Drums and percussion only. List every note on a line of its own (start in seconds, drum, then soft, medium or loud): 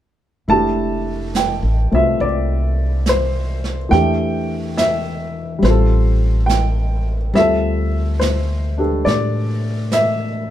0.49 brush sweep soft
1.35 snare soft
1.35 hi-hat pedal soft
2.21 brush sweep soft
3.06 snare soft
3.06 hi-hat pedal soft
3.64 snare soft
3.92 brush sweep soft
3.92 snare soft
4.78 snare soft
4.78 hi-hat pedal soft
5.64 brush sweep soft
5.64 snare soft
6.49 snare soft
6.49 hi-hat pedal soft
7.35 brush sweep soft
7.35 snare soft
8.21 snare soft
8.21 hi-hat pedal soft
9.07 brush sweep soft
9.07 snare soft
9.92 snare soft
9.92 hi-hat pedal soft